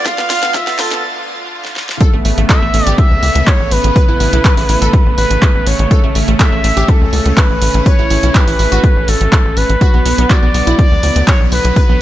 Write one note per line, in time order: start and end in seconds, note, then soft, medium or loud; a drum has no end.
0.00 1.97 D2 medium
0.00 1.97 D3 medium
0.00 1.97 F4 medium
0.00 1.97 F5 medium
0.00 1.03 A6 medium
0.05 0.13 F4 loud
0.05 0.56 F5 loud
0.05 kick loud
0.05 snare loud
0.05 closed hi-hat medium
0.18 0.25 B3 medium
0.18 snare medium
0.30 0.37 F4 loud
0.30 snare loud
0.30 open hi-hat loud
0.43 0.49 B3 medium
0.43 snare medium
0.43 closed hi-hat medium
0.54 0.62 F4 loud
0.54 0.80 E5 loud
0.54 kick loud
0.54 snare loud
0.54 closed hi-hat medium
0.67 0.74 B3 medium
0.67 snare medium
0.67 open hi-hat medium
0.79 0.86 F4 medium
0.79 1.03 A4 medium
0.79 snare loud
0.79 open hi-hat loud
0.91 0.98 B3 medium
0.91 snare medium
0.91 closed hi-hat medium
1.65 snare medium
1.76 snare medium
1.89 snare medium
2.01 9.77 C#3 medium
2.01 9.77 A3 medium
2.01 5.87 B3 medium
2.01 2.08 A4 loud
2.01 kick loud
2.01 closed hi-hat medium
2.13 2.21 A1 medium
2.13 2.20 A3 medium
2.25 2.33 A1 loud
2.25 2.32 A3 medium
2.25 open hi-hat loud
2.38 2.45 A1 medium
2.38 2.44 A3 medium
2.38 closed hi-hat medium
2.49 2.57 A4 loud
2.49 2.95 E5 loud
2.49 kick loud
2.49 clap loud
2.49 closed hi-hat medium
2.62 2.69 A1 medium
2.62 2.69 A3 medium
2.74 2.82 A1 loud
2.74 2.81 A3 medium
2.74 open hi-hat loud
2.87 2.94 A1 medium
2.87 3.87 G4 loud
2.87 closed hi-hat medium
2.98 3.49 E5 loud
2.98 kick loud
2.98 closed hi-hat medium
3.11 3.18 C#2 medium
3.23 3.31 C#2 loud
3.23 open hi-hat loud
3.35 3.43 C#2 medium
3.35 closed hi-hat medium
3.47 3.73 C#5 loud
3.47 kick loud
3.47 clap loud
3.47 closed hi-hat medium
3.60 3.67 A1 medium
3.71 3.79 A1 medium
3.71 5.17 B4 loud
3.71 open hi-hat loud
3.84 3.91 A1 loud
3.84 closed hi-hat medium
3.96 4.03 B4 loud
3.96 kick loud
3.96 closed hi-hat medium
4.09 4.16 A1 medium
4.09 4.15 E4 medium
4.20 4.28 A1 loud
4.20 4.27 E4 medium
4.20 open hi-hat loud
4.33 4.40 B1 medium
4.33 4.40 E4 medium
4.33 closed hi-hat medium
4.45 4.52 B4 medium
4.45 kick loud
4.45 clap loud
4.45 closed hi-hat medium
4.57 4.65 A1 medium
4.57 4.64 E4 medium
4.57 open hi-hat medium
4.69 4.77 A1 loud
4.69 4.76 E4 medium
4.69 open hi-hat loud
4.82 4.89 A1 medium
4.82 5.82 A4 loud
4.82 closed hi-hat medium
4.93 kick loud
4.93 closed hi-hat soft
5.06 5.13 A1 medium
5.18 5.26 A1 loud
5.18 5.68 B4 medium
5.18 open hi-hat loud
5.30 5.38 A1 medium
5.30 closed hi-hat medium
5.42 kick loud
5.42 clap loud
5.42 closed hi-hat medium
5.55 5.62 A1 medium
5.66 5.75 A1 loud
5.66 6.15 C#5 medium
5.66 open hi-hat loud
5.79 5.87 A1 medium
5.79 closed hi-hat medium
5.91 9.77 C#4 medium
5.91 5.98 A4 loud
5.91 kick loud
5.91 closed hi-hat medium
6.04 6.11 A1 medium
6.04 6.10 A3 medium
6.15 6.23 A1 loud
6.15 6.23 A3 medium
6.15 open hi-hat loud
6.28 6.35 A1 loud
6.28 6.35 A3 medium
6.28 closed hi-hat medium
6.40 6.47 A4 medium
6.40 6.90 E5 medium
6.40 kick loud
6.40 clap loud
6.40 closed hi-hat medium
6.52 6.60 A1 medium
6.52 6.59 A3 medium
6.64 6.72 A1 loud
6.64 6.71 A3 medium
6.64 open hi-hat loud
6.77 6.84 A1 medium
6.77 7.77 G4 loud
6.77 closed hi-hat medium
6.88 7.39 A4 medium
6.88 kick loud
6.88 closed hi-hat medium
7.01 7.08 C#2 medium
7.13 7.21 C#2 loud
7.13 open hi-hat loud
7.26 7.33 C#2 medium
7.26 closed hi-hat medium
7.37 7.85 B4 medium
7.37 kick loud
7.37 clap loud
7.37 closed hi-hat medium
7.50 7.57 A1 medium
7.62 7.70 A1 medium
7.62 open hi-hat loud
7.74 7.82 A1 loud
7.74 closed hi-hat medium
7.86 7.93 B4 loud
7.86 8.36 C#5 loud
7.86 kick loud
7.86 closed hi-hat medium
7.99 8.06 A1 medium
7.99 8.05 E4 medium
8.10 8.18 A1 loud
8.10 8.18 E4 medium
8.10 open hi-hat loud
8.23 8.30 B1 medium
8.23 8.30 E4 medium
8.23 closed hi-hat medium
8.35 8.42 G4 medium
8.35 9.10 B4 loud
8.35 kick loud
8.35 clap loud
8.35 closed hi-hat soft
8.48 8.55 A1 medium
8.48 8.54 E4 medium
8.48 open hi-hat medium
8.59 8.67 A1 loud
8.59 8.66 E4 medium
8.59 open hi-hat loud
8.72 8.79 A1 medium
8.72 9.72 F#4 loud
8.72 closed hi-hat medium
8.84 kick loud
8.84 closed hi-hat soft
8.96 9.04 A1 medium
9.08 9.16 A1 loud
9.08 9.58 A4 medium
9.08 open hi-hat loud
9.21 9.28 A1 medium
9.21 closed hi-hat medium
9.32 kick loud
9.32 clap loud
9.32 closed hi-hat medium
9.45 9.52 A1 medium
9.57 9.65 A1 medium
9.57 10.32 B4 loud
9.57 open hi-hat loud
9.70 9.77 A1 loud
9.70 closed hi-hat medium
9.81 12.02 D3 medium
9.81 12.02 F#3 medium
9.81 12.02 B3 medium
9.81 9.88 F#4 loud
9.81 kick loud
9.81 closed hi-hat soft
9.94 10.01 B1 medium
9.94 10.01 B3 medium
10.06 10.14 B1 loud
10.06 10.13 B3 medium
10.06 open hi-hat loud
10.18 10.26 B1 loud
10.18 10.25 B3 medium
10.18 closed hi-hat medium
10.30 10.37 F#4 loud
10.30 10.78 D5 loud
10.30 kick loud
10.30 clap loud
10.30 closed hi-hat medium
10.43 10.50 B1 medium
10.43 10.49 B3 medium
10.54 10.62 B1 loud
10.54 10.62 B3 medium
10.54 open hi-hat loud
10.67 10.74 B1 medium
10.67 11.67 E4 medium
10.67 closed hi-hat medium
10.79 11.24 D5 medium
10.79 kick loud
10.79 closed hi-hat soft
10.91 10.99 D2 medium
11.03 11.11 D2 loud
11.03 open hi-hat loud
11.16 11.23 D2 medium
11.16 closed hi-hat medium
11.27 11.39 C#5 medium
11.27 kick loud
11.27 clap loud
11.27 closed hi-hat medium
11.40 11.48 B1 medium
11.52 11.60 B1 loud
11.52 12.02 B4 loud
11.52 open hi-hat loud
11.65 11.72 B1 loud
11.65 closed hi-hat medium
11.76 11.84 B4 loud
11.76 kick loud
11.76 closed hi-hat medium
11.89 11.96 B1 medium
11.89 11.96 B3 medium